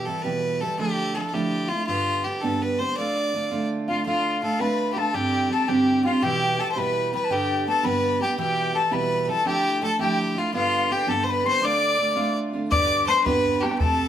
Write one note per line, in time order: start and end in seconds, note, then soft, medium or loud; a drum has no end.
0.05 0.24 E3 medium
0.05 0.24 G3 soft
0.05 0.24 E4 medium
0.05 0.23 A4 medium
0.10 0.23 G4 medium
0.22 0.62 B2 medium
0.22 0.61 G3 medium
0.22 0.60 E4 medium
0.22 0.60 G4 medium
0.22 0.62 B4 medium
0.26 0.63 E2 medium
0.26 0.62 E3 medium
0.60 0.78 E3 soft
0.60 0.79 G3 soft
0.60 0.79 E4 soft
0.60 0.79 G4 soft
0.60 0.78 A4 medium
0.78 1.21 D3 medium
0.78 1.14 F3 medium
0.78 1.16 A3 medium
0.78 1.17 D4 medium
0.78 1.17 E4 medium
0.78 1.16 G4 loud
1.15 1.33 F3 medium
1.15 1.33 A3 medium
1.15 1.33 D4 soft
1.15 1.32 E4 medium
1.15 1.35 A4 medium
1.33 1.73 D3 medium
1.33 1.72 F3 medium
1.33 1.71 A3 medium
1.33 1.71 D4 medium
1.33 1.69 E4 medium
1.33 1.70 G4 medium
1.69 1.88 E4 soft
1.69 1.86 F4 medium
1.73 1.89 A3 soft
1.87 2.25 G2 medium
1.87 2.43 D3 medium
1.87 2.24 G3 medium
1.87 2.25 B3 medium
1.87 2.27 D4 medium
1.87 2.25 F4 medium
1.87 2.26 G4 medium
2.24 2.43 G3 soft
2.24 2.42 B3 soft
2.24 2.42 D4 medium
2.24 2.42 G4 medium
2.28 2.41 G4 medium
2.41 2.81 G2 medium
2.41 2.97 D3 medium
2.41 2.81 G3 soft
2.41 2.80 B3 medium
2.41 2.80 D4 medium
2.41 2.78 G4 medium
2.41 2.63 A4 medium
2.62 2.80 B4 medium
2.79 2.97 G3 soft
2.79 2.98 B3 soft
2.79 2.97 D4 soft
2.79 2.97 G4 soft
2.79 2.96 C5 medium
2.97 3.33 D3 medium
2.97 3.33 A3 medium
2.97 3.35 D4 medium
2.97 3.35 F4 medium
2.97 3.67 D5 medium
3.34 3.52 D3 soft
3.34 3.51 A3 soft
3.34 3.50 D4 soft
3.34 3.50 F4 medium
3.51 4.05 D3 medium
3.51 3.89 A3 medium
3.51 3.89 D4 medium
3.51 3.87 F4 medium
3.88 4.05 A3 soft
3.88 4.06 D4 soft
3.88 4.06 F4 soft
3.88 4.05 F4 medium
3.88 4.05 F5 medium
4.06 4.41 D3 medium
4.06 4.42 A3 medium
4.06 4.43 D4 medium
4.06 4.40 F4 medium
4.06 4.44 F4 medium
4.06 4.63 F5 medium
4.42 4.60 D3 soft
4.42 4.60 A3 medium
4.42 4.60 D4 medium
4.42 4.59 F4 soft
4.42 4.61 A4 medium
4.59 4.98 D3 soft
4.59 4.98 A3 medium
4.59 4.97 D4 medium
4.59 4.95 F4 medium
4.59 4.92 B4 medium
4.59 4.99 B5 medium
4.93 5.14 F4 soft
4.93 4.99 G4 medium
4.98 5.14 A3 soft
4.98 5.14 D4 soft
4.98 5.16 A4 medium
4.98 5.08 A5 medium
5.08 5.17 A5 medium
5.14 5.51 G2 medium
5.14 5.51 D3 medium
5.14 5.49 G3 medium
5.14 5.49 C4 medium
5.14 5.50 D4 medium
5.14 5.54 G4 medium
5.14 5.52 G4 medium
5.14 5.51 G5 medium
5.49 5.68 G3 medium
5.49 5.68 C4 soft
5.49 5.67 D4 soft
5.49 5.67 G4 medium
5.49 5.70 A4 medium
5.49 5.70 A5 medium
5.68 6.06 G2 medium
5.68 6.06 D3 medium
5.68 6.07 G3 medium
5.68 6.05 C4 medium
5.68 6.05 D4 medium
5.68 6.04 G4 medium
5.68 6.05 G5 medium
6.05 6.22 G3 soft
6.05 6.23 C4 soft
6.05 6.23 D4 soft
6.05 6.24 F4 medium
6.05 6.22 G4 soft
6.05 6.12 F5 medium
6.22 6.59 E2 medium
6.22 6.59 B2 medium
6.22 6.57 E3 medium
6.22 6.59 G3 medium
6.22 6.59 E4 medium
6.22 6.62 G4 loud
6.22 6.61 G4 medium
6.22 6.61 G5 medium
6.58 6.76 E3 medium
6.58 6.76 G3 medium
6.58 6.75 E4 medium
6.58 6.75 G4 medium
6.58 6.70 A4 medium
6.58 6.77 A5 medium
6.72 6.80 C5 medium
6.76 7.14 E2 medium
6.76 7.14 B2 medium
6.76 7.14 E3 medium
6.76 7.14 G3 medium
6.76 7.13 E4 medium
6.76 7.13 G4 medium
6.76 7.14 B4 medium
6.76 7.11 B5 medium
7.13 7.30 E3 soft
7.13 7.29 G3 soft
7.13 7.31 E4 soft
7.13 7.30 G4 soft
7.13 7.33 B4 medium
7.13 7.26 B5 medium
7.24 7.32 A5 medium
7.30 7.67 G2 medium
7.30 7.67 D3 medium
7.30 7.65 G3 medium
7.30 7.66 B3 medium
7.30 7.67 D4 medium
7.30 7.68 G4 medium
7.30 7.67 G5 medium
7.66 7.84 G3 soft
7.66 7.83 B3 soft
7.66 7.83 D4 medium
7.66 7.82 G4 medium
7.66 7.86 A4 medium
7.66 7.86 A5 medium
7.83 8.22 G2 medium
7.83 8.21 D3 medium
7.83 8.21 G3 medium
7.83 8.20 B3 medium
7.83 8.20 D4 medium
7.83 8.19 G4 medium
7.83 8.21 B4 medium
7.83 8.24 B5 medium
8.20 8.37 G3 soft
8.20 8.38 B3 soft
8.20 8.38 D4 soft
8.20 8.38 G4 soft
8.20 8.37 G4 medium
8.20 8.38 G5 medium
8.38 8.75 E2 medium
8.38 8.75 B2 medium
8.38 8.73 E3 medium
8.38 8.73 G3 medium
8.38 8.74 E4 medium
8.38 8.75 G4 medium
8.38 8.77 G4 medium
8.38 8.73 G5 medium
8.74 8.91 E3 medium
8.74 8.91 G3 medium
8.74 8.90 E4 medium
8.74 8.90 G4 medium
8.74 8.95 A4 medium
8.74 8.94 A5 medium
8.91 9.29 E2 medium
8.91 9.29 B2 medium
8.91 9.29 E3 medium
8.91 9.28 G3 medium
8.91 9.27 E4 medium
8.91 9.26 G4 medium
8.91 9.25 B4 medium
8.91 9.29 B5 medium
9.25 9.45 E4 medium
9.25 9.45 G4 soft
9.25 9.31 B4 medium
9.29 9.44 E3 soft
9.29 9.45 G3 soft
9.29 9.46 A4 medium
9.29 9.48 A5 medium
9.44 9.87 D3 medium
9.44 9.80 F3 medium
9.44 9.81 A3 medium
9.44 9.82 D4 medium
9.44 9.82 E4 medium
9.44 9.81 G4 loud
9.44 9.85 G5 medium
9.81 9.99 F3 medium
9.81 9.99 A3 medium
9.81 9.98 D4 medium
9.81 9.98 E4 medium
9.81 9.99 A4 medium
9.81 9.99 A5 medium
9.99 10.38 D3 medium
9.99 10.37 F3 medium
9.99 10.37 A3 medium
9.99 10.36 D4 medium
9.99 10.34 E4 medium
9.99 10.40 G4 medium
9.99 10.18 G5 medium
10.35 10.54 A3 soft
10.35 10.53 D4 soft
10.35 10.53 E4 soft
10.35 10.53 F4 medium
10.35 10.54 F5 medium
10.53 10.90 G2 medium
10.53 11.08 D3 medium
10.53 10.89 G3 medium
10.53 10.89 B3 medium
10.53 10.91 D4 medium
10.53 10.93 F4 loud
10.53 10.91 G4 medium
10.53 10.89 F5 medium
10.90 11.07 G3 medium
10.90 11.07 B3 medium
10.90 11.06 D4 medium
10.90 11.12 G4 medium
10.90 11.05 G4 medium
10.90 11.10 G5 medium
11.07 11.45 G2 medium
11.07 11.61 D3 medium
11.07 11.45 G3 medium
11.07 11.44 B3 medium
11.07 11.45 D4 medium
11.07 11.42 G4 medium
11.07 11.25 A4 medium
11.07 11.27 A5 medium
11.23 11.32 C5 medium
11.28 11.47 B4 medium
11.28 11.47 B5 medium
11.44 11.60 G3 soft
11.44 11.61 B3 soft
11.44 11.61 D4 soft
11.44 11.62 G4 soft
11.44 11.66 C5 loud
11.44 11.63 C6 medium
11.61 11.96 D3 medium
11.61 11.97 A3 medium
11.61 11.98 D4 medium
11.61 11.99 F4 medium
11.61 12.37 D5 loud
11.61 12.33 D6 medium
11.98 12.16 D3 soft
11.98 12.16 A3 medium
11.98 12.15 D4 medium
11.98 12.14 F4 medium
12.16 12.54 D3 medium
12.16 12.54 A3 medium
12.16 12.53 D4 medium
12.16 12.52 F4 medium
12.53 12.71 A3 soft
12.53 12.71 D4 soft
12.53 12.71 F4 soft
12.70 13.08 G2 medium
12.70 13.08 D3 medium
12.70 13.07 G3 medium
12.70 13.07 B3 medium
12.70 13.08 D4 medium
12.70 13.09 G4 medium
12.70 13.05 D5 loud
12.70 13.05 D6 loud
12.70 bodhran medium
12.91 bodhran soft
13.07 13.25 G3 soft
13.07 13.25 B3 soft
13.07 13.24 D4 medium
13.07 13.24 G4 medium
13.07 13.23 C5 medium
13.07 13.27 C6 medium
13.07 bodhran medium
13.24 13.63 G2 soft
13.24 13.63 D3 medium
13.24 13.65 G3 medium
13.24 13.63 B3 medium
13.24 13.62 D4 medium
13.24 13.62 G4 medium
13.24 13.62 B4 medium
13.24 13.65 B5 medium
13.24 bodhran medium
13.45 bodhran soft
13.60 13.80 D4 soft
13.60 13.78 G4 medium
13.60 13.80 G4 soft
13.60 13.82 G5 medium
13.60 bodhran medium
13.65 13.80 G3 soft
13.65 13.80 B3 soft
13.71 bodhran medium
13.78 14.08 F3 medium
13.78 14.08 A3 medium
13.78 14.08 C4 medium
13.78 14.08 G4 medium
13.78 14.08 A4 medium
13.78 14.08 A5 medium
13.78 bodhran medium
14.00 bodhran soft